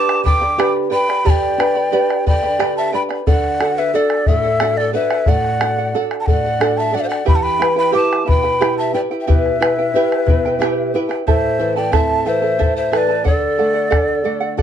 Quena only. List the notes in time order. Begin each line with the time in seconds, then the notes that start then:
Already playing: D6
0.25 D6
0.93 B5
1.26 A5
1.30 G5
2.29 G5
2.77 A5
2.94 B5
3.27 F#5
3.78 E5
3.95 D5
4.27 E5
4.77 D5
4.95 E5
5.29 F#5
6.20 A5
6.27 F#5
6.78 A5
6.95 F#5
7.00 E5
7.07 F#5
7.28 B5
7.35 A5
7.43 B5
7.79 B5
7.94 D6
8.27 B5
8.78 A5
8.94 G5
9.21 G5
9.28 E5
11.28 E5
11.76 G5
11.93 A5
12.27 E5
12.77 E5
12.94 D5 E5
13.27 D5